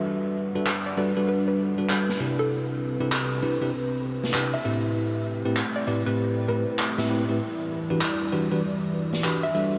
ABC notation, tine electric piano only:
X:1
M:4/4
L:1/16
Q:"Swing 16ths" 1/4=98
K:Em
V:1 name="Tine electric piano"
[G,DFAB]3 [G,DFAB] z2 [G,DFAB] [G,DFAB]4 [G,DFAB] [G,DFAB] z [C,DEGB]2- | [C,DEGB]3 [C,DEGB] z2 [C,DEGB] [C,DEGB] z4 [C,DEGB] z [A,,CEGB]2- | [A,,CEGB]3 [A,,CEGB] z2 [A,,CEGB] [A,,CEGB]3 [A,,CEGB] z2 [A,,CEGB] [A,,CEGB] [A,,CEGB] | z3 [E,DFGB] z2 [E,DFGB] [E,DFGB] z4 [E,DFGB] z [G,DFAB]2 |]